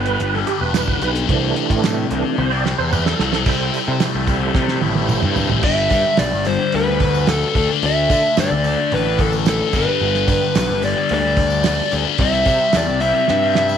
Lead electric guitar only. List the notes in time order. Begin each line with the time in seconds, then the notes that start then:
5.64 E5
6.19 D5
6.47 C5
6.75 B4
7.29 A4
7.86 E5
8.40 D5
8.94 B4
9.21 A4
9.49 A4
9.77 B4
10.85 D5
11.14 D5
12.21 E5
12.77 D5
13.01 E5